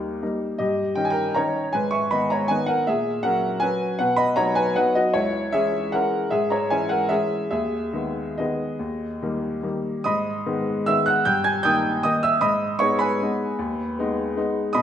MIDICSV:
0, 0, Header, 1, 2, 480
1, 0, Start_track
1, 0, Key_signature, 5, "minor"
1, 0, Tempo, 379507
1, 761, Time_signature, 3, 2, 24, 8
1, 6989, Tempo, 398671
1, 9389, Tempo, 429799
1, 10829, Tempo, 411523
1, 13229, Tempo, 387847
1, 18124, End_track
2, 0, Start_track
2, 0, Title_t, "Upright piano"
2, 0, Program_c, 0, 0
2, 0, Control_c, 0, 64, 127
2, 0, Note_on_c, 0, 39, 46
2, 0, Note_on_c, 0, 55, 37
2, 0, Note_on_c, 0, 58, 37
2, 0, Note_on_c, 0, 63, 43
2, 0, Note_on_c, 0, 70, 66
2, 221, Note_off_c, 0, 55, 0
2, 225, Note_off_c, 0, 58, 0
2, 226, Note_off_c, 0, 63, 0
2, 284, Note_on_c, 0, 55, 35
2, 284, Note_on_c, 0, 63, 39
2, 286, Note_on_c, 0, 58, 36
2, 292, Control_c, 0, 64, 0
2, 309, Note_off_c, 0, 39, 0
2, 519, Note_off_c, 0, 70, 0
2, 716, Note_off_c, 0, 55, 0
2, 717, Note_off_c, 0, 63, 0
2, 718, Note_off_c, 0, 58, 0
2, 739, Note_on_c, 0, 75, 67
2, 752, Note_on_c, 0, 67, 47
2, 756, Note_on_c, 0, 43, 45
2, 1014, Control_c, 0, 64, 127
2, 1189, Note_off_c, 0, 67, 0
2, 1207, Note_on_c, 0, 79, 70
2, 1210, Note_off_c, 0, 43, 0
2, 1215, Note_off_c, 0, 75, 0
2, 1225, Note_on_c, 0, 51, 39
2, 1228, Note_on_c, 0, 61, 41
2, 1233, Note_on_c, 0, 63, 43
2, 1302, Note_off_c, 0, 79, 0
2, 1326, Note_on_c, 0, 80, 65
2, 1395, Note_on_c, 0, 79, 73
2, 1406, Note_off_c, 0, 80, 0
2, 1410, Note_on_c, 0, 70, 58
2, 1669, Note_off_c, 0, 51, 0
2, 1671, Note_off_c, 0, 61, 0
2, 1673, Note_off_c, 0, 63, 0
2, 1701, Note_on_c, 0, 82, 77
2, 1703, Note_off_c, 0, 70, 0
2, 1717, Note_off_c, 0, 79, 0
2, 1719, Note_on_c, 0, 51, 38
2, 1721, Note_on_c, 0, 73, 56
2, 1731, Note_on_c, 0, 61, 37
2, 1733, Note_on_c, 0, 63, 44
2, 1737, Control_c, 0, 64, 0
2, 2155, Note_off_c, 0, 51, 0
2, 2161, Note_off_c, 0, 61, 0
2, 2162, Note_off_c, 0, 63, 0
2, 2171, Note_off_c, 0, 73, 0
2, 2183, Note_on_c, 0, 80, 72
2, 2194, Note_off_c, 0, 82, 0
2, 2204, Note_on_c, 0, 71, 56
2, 2212, Note_on_c, 0, 44, 49
2, 2412, Control_c, 0, 64, 127
2, 2412, Note_on_c, 0, 85, 70
2, 2422, Note_off_c, 0, 71, 0
2, 2428, Note_off_c, 0, 80, 0
2, 2428, Note_on_c, 0, 76, 52
2, 2654, Note_off_c, 0, 76, 0
2, 2663, Note_off_c, 0, 85, 0
2, 2666, Note_off_c, 0, 44, 0
2, 2666, Note_on_c, 0, 83, 77
2, 2680, Note_on_c, 0, 75, 58
2, 2683, Note_on_c, 0, 51, 42
2, 2688, Note_on_c, 0, 59, 42
2, 2693, Note_on_c, 0, 63, 42
2, 2902, Note_off_c, 0, 75, 0
2, 2912, Note_off_c, 0, 83, 0
2, 2912, Note_on_c, 0, 82, 75
2, 2931, Note_on_c, 0, 73, 58
2, 3117, Note_off_c, 0, 51, 0
2, 3119, Note_off_c, 0, 59, 0
2, 3122, Note_off_c, 0, 63, 0
2, 3138, Note_on_c, 0, 80, 89
2, 3151, Note_off_c, 0, 73, 0
2, 3159, Note_off_c, 0, 82, 0
2, 3164, Note_on_c, 0, 51, 41
2, 3169, Note_on_c, 0, 71, 61
2, 3170, Note_on_c, 0, 59, 39
2, 3171, Control_c, 0, 64, 0
2, 3177, Note_on_c, 0, 63, 41
2, 3370, Note_on_c, 0, 78, 81
2, 3390, Note_on_c, 0, 70, 62
2, 3391, Note_off_c, 0, 71, 0
2, 3393, Note_off_c, 0, 80, 0
2, 3594, Note_off_c, 0, 51, 0
2, 3597, Note_off_c, 0, 59, 0
2, 3601, Note_off_c, 0, 63, 0
2, 3616, Note_off_c, 0, 70, 0
2, 3623, Note_off_c, 0, 78, 0
2, 3630, Note_on_c, 0, 76, 77
2, 3648, Note_on_c, 0, 46, 50
2, 3648, Note_on_c, 0, 68, 58
2, 3868, Control_c, 0, 64, 127
2, 4084, Note_on_c, 0, 78, 79
2, 4086, Note_off_c, 0, 68, 0
2, 4097, Note_on_c, 0, 70, 59
2, 4098, Note_on_c, 0, 54, 43
2, 4103, Note_on_c, 0, 61, 46
2, 4105, Note_off_c, 0, 46, 0
2, 4110, Note_off_c, 0, 76, 0
2, 4538, Note_off_c, 0, 54, 0
2, 4540, Note_off_c, 0, 61, 0
2, 4551, Note_on_c, 0, 80, 85
2, 4552, Note_off_c, 0, 70, 0
2, 4572, Note_on_c, 0, 71, 60
2, 4577, Note_on_c, 0, 54, 44
2, 4580, Note_off_c, 0, 78, 0
2, 4584, Note_on_c, 0, 61, 43
2, 4608, Control_c, 0, 64, 0
2, 5008, Note_off_c, 0, 54, 0
2, 5012, Note_off_c, 0, 61, 0
2, 5020, Note_off_c, 0, 71, 0
2, 5041, Note_on_c, 0, 78, 83
2, 5043, Note_off_c, 0, 80, 0
2, 5060, Note_on_c, 0, 47, 52
2, 5060, Note_on_c, 0, 71, 65
2, 5268, Note_on_c, 0, 83, 80
2, 5277, Note_off_c, 0, 71, 0
2, 5280, Note_on_c, 0, 75, 62
2, 5284, Note_off_c, 0, 78, 0
2, 5305, Control_c, 0, 64, 127
2, 5508, Note_off_c, 0, 75, 0
2, 5512, Note_on_c, 0, 82, 89
2, 5516, Note_off_c, 0, 47, 0
2, 5519, Note_off_c, 0, 83, 0
2, 5522, Note_on_c, 0, 73, 66
2, 5528, Note_on_c, 0, 54, 46
2, 5533, Note_on_c, 0, 59, 41
2, 5538, Note_on_c, 0, 63, 48
2, 5753, Note_off_c, 0, 73, 0
2, 5760, Note_on_c, 0, 80, 82
2, 5765, Note_on_c, 0, 71, 66
2, 5766, Note_off_c, 0, 82, 0
2, 5974, Note_off_c, 0, 54, 0
2, 5977, Note_off_c, 0, 59, 0
2, 5980, Note_off_c, 0, 63, 0
2, 6002, Note_off_c, 0, 71, 0
2, 6018, Note_off_c, 0, 80, 0
2, 6018, Note_on_c, 0, 78, 82
2, 6023, Note_on_c, 0, 71, 67
2, 6025, Note_on_c, 0, 54, 41
2, 6028, Note_on_c, 0, 59, 40
2, 6035, Note_on_c, 0, 63, 48
2, 6038, Control_c, 0, 64, 0
2, 6256, Note_off_c, 0, 71, 0
2, 6263, Note_on_c, 0, 75, 77
2, 6271, Note_off_c, 0, 78, 0
2, 6280, Note_on_c, 0, 66, 60
2, 6464, Note_off_c, 0, 54, 0
2, 6466, Note_off_c, 0, 59, 0
2, 6470, Note_off_c, 0, 63, 0
2, 6495, Note_on_c, 0, 73, 78
2, 6500, Note_off_c, 0, 66, 0
2, 6508, Note_off_c, 0, 75, 0
2, 6511, Note_on_c, 0, 37, 55
2, 6511, Note_on_c, 0, 64, 54
2, 6711, Control_c, 0, 64, 127
2, 6956, Note_off_c, 0, 64, 0
2, 6975, Note_off_c, 0, 37, 0
2, 6982, Note_off_c, 0, 73, 0
2, 6988, Note_on_c, 0, 76, 85
2, 7004, Note_on_c, 0, 68, 62
2, 7009, Note_on_c, 0, 52, 42
2, 7012, Note_on_c, 0, 56, 42
2, 7018, Note_on_c, 0, 61, 47
2, 7432, Note_off_c, 0, 52, 0
2, 7433, Note_off_c, 0, 56, 0
2, 7437, Note_off_c, 0, 61, 0
2, 7444, Note_off_c, 0, 68, 0
2, 7466, Note_on_c, 0, 78, 75
2, 7468, Note_off_c, 0, 76, 0
2, 7480, Note_on_c, 0, 52, 42
2, 7481, Note_on_c, 0, 70, 63
2, 7487, Control_c, 0, 64, 0
2, 7491, Note_on_c, 0, 56, 41
2, 7498, Note_on_c, 0, 61, 41
2, 7903, Note_off_c, 0, 52, 0
2, 7909, Note_off_c, 0, 56, 0
2, 7913, Note_off_c, 0, 61, 0
2, 7918, Note_off_c, 0, 70, 0
2, 7928, Note_on_c, 0, 76, 77
2, 7941, Note_on_c, 0, 68, 64
2, 7943, Note_off_c, 0, 78, 0
2, 7944, Note_on_c, 0, 44, 53
2, 8159, Note_off_c, 0, 68, 0
2, 8165, Note_on_c, 0, 82, 69
2, 8169, Note_off_c, 0, 76, 0
2, 8169, Control_c, 0, 64, 127
2, 8182, Note_on_c, 0, 73, 59
2, 8399, Note_off_c, 0, 73, 0
2, 8400, Note_off_c, 0, 44, 0
2, 8408, Note_off_c, 0, 82, 0
2, 8408, Note_on_c, 0, 80, 74
2, 8417, Note_on_c, 0, 73, 51
2, 8426, Note_on_c, 0, 52, 41
2, 8428, Note_on_c, 0, 56, 41
2, 8428, Note_on_c, 0, 61, 48
2, 8633, Note_on_c, 0, 78, 76
2, 8639, Note_off_c, 0, 73, 0
2, 8639, Note_on_c, 0, 70, 62
2, 8651, Note_off_c, 0, 80, 0
2, 8857, Note_off_c, 0, 52, 0
2, 8858, Note_off_c, 0, 56, 0
2, 8858, Note_off_c, 0, 61, 0
2, 8871, Note_on_c, 0, 76, 79
2, 8873, Note_off_c, 0, 70, 0
2, 8886, Note_on_c, 0, 68, 58
2, 8888, Note_off_c, 0, 78, 0
2, 8889, Note_on_c, 0, 52, 40
2, 8891, Note_on_c, 0, 56, 39
2, 8899, Note_on_c, 0, 61, 44
2, 8917, Control_c, 0, 64, 0
2, 9338, Note_off_c, 0, 52, 0
2, 9339, Note_off_c, 0, 56, 0
2, 9343, Note_off_c, 0, 61, 0
2, 9350, Note_off_c, 0, 68, 0
2, 9355, Note_off_c, 0, 76, 0
2, 9373, Note_on_c, 0, 76, 71
2, 9378, Note_on_c, 0, 68, 60
2, 9388, Note_on_c, 0, 39, 48
2, 9645, Control_c, 0, 64, 127
2, 9850, Note_on_c, 0, 51, 40
2, 9851, Note_off_c, 0, 39, 0
2, 9854, Note_on_c, 0, 56, 39
2, 9866, Note_on_c, 0, 59, 42
2, 10307, Note_off_c, 0, 51, 0
2, 10309, Note_off_c, 0, 56, 0
2, 10309, Note_off_c, 0, 68, 0
2, 10315, Note_off_c, 0, 59, 0
2, 10347, Note_on_c, 0, 75, 57
2, 10351, Note_off_c, 0, 76, 0
2, 10364, Note_on_c, 0, 68, 45
2, 10366, Note_on_c, 0, 51, 39
2, 10370, Note_on_c, 0, 56, 34
2, 10371, Note_on_c, 0, 59, 43
2, 10378, Control_c, 0, 64, 0
2, 10789, Note_off_c, 0, 51, 0
2, 10791, Note_off_c, 0, 56, 0
2, 10791, Note_off_c, 0, 59, 0
2, 10812, Note_on_c, 0, 39, 48
2, 11088, Control_c, 0, 64, 127
2, 11286, Note_off_c, 0, 39, 0
2, 11314, Note_on_c, 0, 51, 39
2, 11314, Note_on_c, 0, 55, 38
2, 11325, Note_on_c, 0, 58, 43
2, 11752, Note_off_c, 0, 51, 0
2, 11752, Note_off_c, 0, 55, 0
2, 11752, Note_off_c, 0, 68, 0
2, 11757, Note_off_c, 0, 58, 0
2, 11787, Note_on_c, 0, 51, 36
2, 11790, Note_off_c, 0, 75, 0
2, 11791, Note_on_c, 0, 55, 37
2, 11792, Note_on_c, 0, 58, 42
2, 11806, Control_c, 0, 64, 0
2, 12232, Note_off_c, 0, 51, 0
2, 12234, Note_off_c, 0, 55, 0
2, 12235, Note_off_c, 0, 58, 0
2, 12267, Note_on_c, 0, 87, 78
2, 12280, Note_on_c, 0, 75, 65
2, 12282, Note_on_c, 0, 44, 53
2, 12291, Note_on_c, 0, 83, 62
2, 12509, Control_c, 0, 64, 127
2, 12742, Note_off_c, 0, 44, 0
2, 12759, Note_on_c, 0, 51, 49
2, 12760, Note_on_c, 0, 59, 50
2, 12762, Note_on_c, 0, 56, 47
2, 13183, Note_off_c, 0, 75, 0
2, 13186, Note_off_c, 0, 51, 0
2, 13187, Note_off_c, 0, 56, 0
2, 13187, Note_off_c, 0, 59, 0
2, 13188, Note_off_c, 0, 83, 0
2, 13223, Note_off_c, 0, 87, 0
2, 13226, Note_on_c, 0, 88, 94
2, 13239, Note_on_c, 0, 51, 43
2, 13240, Note_on_c, 0, 56, 45
2, 13242, Note_on_c, 0, 76, 71
2, 13247, Control_c, 0, 64, 0
2, 13252, Note_on_c, 0, 59, 50
2, 13466, Note_off_c, 0, 76, 0
2, 13467, Note_on_c, 0, 90, 85
2, 13474, Note_off_c, 0, 88, 0
2, 13491, Note_on_c, 0, 78, 67
2, 13671, Note_off_c, 0, 51, 0
2, 13672, Note_off_c, 0, 56, 0
2, 13678, Note_off_c, 0, 59, 0
2, 13705, Note_off_c, 0, 78, 0
2, 13708, Note_on_c, 0, 91, 97
2, 13710, Note_off_c, 0, 90, 0
2, 13716, Note_on_c, 0, 43, 62
2, 13722, Note_on_c, 0, 79, 69
2, 13940, Note_off_c, 0, 79, 0
2, 13943, Note_on_c, 0, 92, 86
2, 13949, Note_off_c, 0, 91, 0
2, 13950, Note_on_c, 0, 80, 67
2, 13978, Control_c, 0, 64, 127
2, 14176, Note_on_c, 0, 91, 101
2, 14179, Note_off_c, 0, 80, 0
2, 14183, Note_off_c, 0, 43, 0
2, 14192, Note_off_c, 0, 92, 0
2, 14194, Note_on_c, 0, 87, 68
2, 14198, Note_on_c, 0, 58, 47
2, 14200, Note_on_c, 0, 51, 45
2, 14202, Note_on_c, 0, 79, 75
2, 14203, Note_on_c, 0, 63, 54
2, 14643, Note_off_c, 0, 58, 0
2, 14644, Note_off_c, 0, 51, 0
2, 14646, Note_off_c, 0, 63, 0
2, 14656, Note_off_c, 0, 87, 0
2, 14660, Note_off_c, 0, 79, 0
2, 14674, Note_on_c, 0, 87, 94
2, 14681, Note_off_c, 0, 91, 0
2, 14689, Note_on_c, 0, 75, 70
2, 14696, Note_on_c, 0, 51, 47
2, 14697, Note_on_c, 0, 58, 44
2, 14705, Note_on_c, 0, 63, 45
2, 14710, Control_c, 0, 64, 0
2, 14915, Note_on_c, 0, 88, 96
2, 14916, Note_off_c, 0, 75, 0
2, 14926, Note_off_c, 0, 87, 0
2, 14927, Note_on_c, 0, 76, 68
2, 15124, Note_off_c, 0, 51, 0
2, 15125, Note_off_c, 0, 58, 0
2, 15129, Note_off_c, 0, 63, 0
2, 15139, Note_on_c, 0, 87, 81
2, 15144, Note_on_c, 0, 83, 66
2, 15148, Note_on_c, 0, 44, 51
2, 15148, Note_on_c, 0, 75, 64
2, 15149, Note_off_c, 0, 76, 0
2, 15160, Note_off_c, 0, 88, 0
2, 15396, Control_c, 0, 64, 127
2, 15601, Note_off_c, 0, 83, 0
2, 15604, Note_off_c, 0, 75, 0
2, 15609, Note_on_c, 0, 85, 90
2, 15620, Note_on_c, 0, 73, 68
2, 15623, Note_off_c, 0, 44, 0
2, 15628, Note_on_c, 0, 59, 48
2, 15629, Note_on_c, 0, 56, 50
2, 15633, Note_off_c, 0, 87, 0
2, 15638, Note_on_c, 0, 63, 53
2, 15855, Note_on_c, 0, 83, 79
2, 15861, Note_off_c, 0, 73, 0
2, 15873, Note_off_c, 0, 85, 0
2, 15873, Note_on_c, 0, 80, 60
2, 15876, Note_on_c, 0, 71, 59
2, 16077, Note_off_c, 0, 56, 0
2, 16077, Note_off_c, 0, 59, 0
2, 16082, Note_off_c, 0, 63, 0
2, 16140, Note_on_c, 0, 56, 43
2, 16145, Control_c, 0, 64, 0
2, 16148, Note_on_c, 0, 59, 42
2, 16150, Note_on_c, 0, 63, 50
2, 16562, Note_off_c, 0, 56, 0
2, 16567, Note_off_c, 0, 59, 0
2, 16568, Note_off_c, 0, 63, 0
2, 16599, Note_on_c, 0, 39, 59
2, 16823, Control_c, 0, 64, 127
2, 17058, Note_off_c, 0, 39, 0
2, 17093, Note_on_c, 0, 56, 50
2, 17098, Note_on_c, 0, 59, 45
2, 17106, Note_on_c, 0, 63, 55
2, 17523, Note_off_c, 0, 56, 0
2, 17526, Note_off_c, 0, 59, 0
2, 17530, Note_off_c, 0, 63, 0
2, 17558, Note_on_c, 0, 56, 52
2, 17567, Note_on_c, 0, 59, 49
2, 17573, Note_on_c, 0, 63, 53
2, 17579, Control_c, 0, 64, 0
2, 17743, Note_off_c, 0, 80, 0
2, 17745, Note_off_c, 0, 71, 0
2, 17784, Note_off_c, 0, 83, 0
2, 17985, Note_off_c, 0, 56, 0
2, 17990, Note_off_c, 0, 59, 0
2, 17993, Note_off_c, 0, 63, 0
2, 18008, Note_on_c, 0, 87, 83
2, 18027, Note_on_c, 0, 75, 67
2, 18031, Note_on_c, 0, 83, 72
2, 18036, Note_on_c, 0, 47, 62
2, 18124, Note_off_c, 0, 47, 0
2, 18124, Note_off_c, 0, 75, 0
2, 18124, Note_off_c, 0, 83, 0
2, 18124, Note_off_c, 0, 87, 0
2, 18124, End_track
0, 0, End_of_file